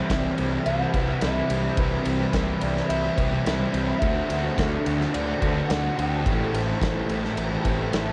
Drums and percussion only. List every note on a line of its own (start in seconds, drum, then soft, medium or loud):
0.10 kick medium
0.10 snare loud
0.10 ride loud
0.38 ride medium
0.66 ride loud
0.94 kick medium
0.94 ride medium
1.21 snare loud
1.21 ride loud
1.50 ride medium
1.77 kick loud
1.77 ride loud
2.05 ride medium
2.33 kick medium
2.33 snare loud
2.33 ride loud
2.61 ride medium
2.77 snare soft
2.90 ride loud
3.18 kick medium
3.18 ride medium
3.46 snare loud
3.46 ride loud
3.74 ride medium
4.02 kick loud
4.02 ride loud
4.30 ride medium
4.58 kick medium
4.58 snare loud
4.58 ride loud
4.86 ride medium
5.01 snare soft
5.14 ride loud
5.42 kick medium
5.42 ride medium
5.70 snare loud
5.70 ride loud
5.99 ride medium
6.26 kick loud
6.26 ride loud
6.54 ride medium
6.82 kick medium
6.82 snare loud
6.82 ride loud
7.09 ride medium
7.25 snare soft
7.37 ride loud
7.65 kick medium
7.65 ride medium
7.93 snare loud
7.93 ride loud